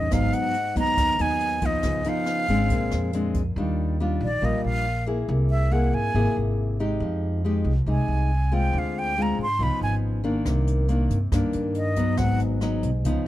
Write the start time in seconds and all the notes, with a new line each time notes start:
Already playing: D#5
0.11 G#1 G#2 F#3 B3 D#4 F5, kick, cross-stick, closed hi-hat
0.33 F#5, closed hi-hat
0.54 closed hi-hat
0.76 D#2 F#3 B3 D#4 A#5, kick, closed hi-hat
0.97 D#2 D#3, kick, cross-stick, closed hi-hat
1.19 D#2 F#3 B3 D#4 G#5, closed hi-hat
1.40 closed hi-hat
1.61 F3 B3 D#4, kick, closed hi-hat
1.66 D#5
1.83 C#2 C#3, kick, cross-stick, closed hi-hat
2.04 F3 B3 D#4, closed hi-hat
2.09 F5
2.26 cross-stick, closed hi-hat
2.48 G#1 G#3 C4 D4, closed hi-hat
2.70 A#1 A#2, kick, closed hi-hat
2.91 F2, cross-stick, closed hi-hat
3.13 G#3 C4 D4, closed hi-hat
3.34 kick, closed hi-hat
3.56 D#2 D#3 G3 D4 F4
4.00 G3 D4 F4
4.20 A#1 D5
4.42 A#1 A#2 G3 D4 F4 D#5
4.64 A#1 F5
5.07 A#3 E4 G#4
5.29 C2 C3
5.50 E5
5.71 A#3 E4 G#4 F#5
5.93 G#1 G#5
6.14 G#1 C3 A#3 E4 G#4
6.36 G#1
6.80 G#3 D#4 G4
7.00 F2 F3
7.45 G#3 D#4 G4
7.64 C2
7.86 C2 C3 G#3 D#4 G#5
8.08 C2
8.52 G#3 C4 F4 G5
8.73 D2 D3
8.78 F5
8.99 G5
9.18 G#3 C4 F4
9.22 A#5
9.38 G#2 C6
9.59 C#2 C#3 F3 B3 D#4 B5
9.81 G#1 G#5
10.24 D#3 A#3 D4
10.45 C2 C3, kick, cross-stick, closed hi-hat
10.67 closed hi-hat
10.88 D#3 A#3 D4, closed hi-hat
11.10 G2, kick, closed hi-hat
11.32 G2 D#3 A#3 D4, kick, cross-stick, closed hi-hat
11.53 G2, closed hi-hat
11.74 D#5, closed hi-hat
11.96 F#3 B3 D#4, kick, closed hi-hat
12.17 G#1 G#2 F#5, kick, cross-stick, closed hi-hat
12.39 closed hi-hat
12.61 F#3 B3 D#4, cross-stick, closed hi-hat
12.83 B1, kick, closed hi-hat
13.04 C#2 C#3 F3 B3 D#4, kick, closed hi-hat